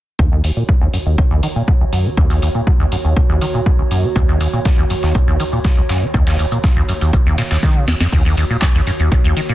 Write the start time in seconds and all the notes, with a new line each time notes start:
0.19 D#2 D#3 F#4 C#5, kick
0.32 D#2
0.44 D#2, open hi-hat
0.57 A#2
0.69 F#2, kick
0.81 D#2
0.93 F#2, open hi-hat
1.06 D#2
1.18 C#2, kick
1.31 D#2
1.43 D#3, open hi-hat
1.56 A#2
1.68 F#2, kick
1.81 C#2
1.93 F#2, open hi-hat
2.05 D#3
2.17 D#2, kick
2.30 D#2, open hi-hat
2.42 D#2, open hi-hat
2.55 A#2
2.67 F#2, kick
2.80 D#2
2.92 F#2, open hi-hat
3.05 D#2
3.17 kick
3.29 D#2
3.41 D#3, open hi-hat
3.54 A#2
3.66 F#2, kick
3.79 C#2
3.91 F#2, open hi-hat
4.04 D#3
4.16 D#2, kick, shaker
4.28 D#2, shaker
4.40 D#2, open hi-hat, shaker
4.52 A#2, shaker
4.65 F#2, kick, snare, shaker
4.78 D#2
4.90 F#2, open hi-hat, shaker
5.03 D#2, snare, shaker
5.15 C#2, kick, shaker
5.28 D#2, shaker
5.40 D#3, open hi-hat, shaker
5.52 A#2, shaker
5.64 F#2, kick, snare, shaker
5.77 C#2
5.89 F#2, snare, open hi-hat, shaker
6.02 D#3, shaker
6.14 D#2, kick, shaker
6.27 D#2, snare, open hi-hat, shaker
6.39 D#2, open hi-hat, shaker
6.52 A#2, shaker
6.64 F#2, kick, snare, shaker
6.76 D#2, shaker
6.89 F#2, open hi-hat, shaker
7.01 D#2, closed hi-hat, shaker
7.13 kick, shaker
7.26 D#2, shaker
7.38 A#2, snare, open hi-hat, shaker
7.50 D#2, snare, shaker
7.63 D#3, kick, snare, shaker
7.76 C#3, shaker
7.87 D#2, snare, open hi-hat, shaker
8.00 F2, snare, shaker
8.12 D#2 D#3 F#4 C#5, kick, closed hi-hat, crash
8.25 D#2
8.37 D#2, open hi-hat
8.50 A#2
8.62 F#2, kick, clap, closed hi-hat
8.75 D#2
8.87 F#2, open hi-hat
9.00 D#2, closed hi-hat
9.12 C#2, kick, closed hi-hat
9.24 D#2, closed hi-hat
9.36 D#3, open hi-hat
9.49 A#2, closed hi-hat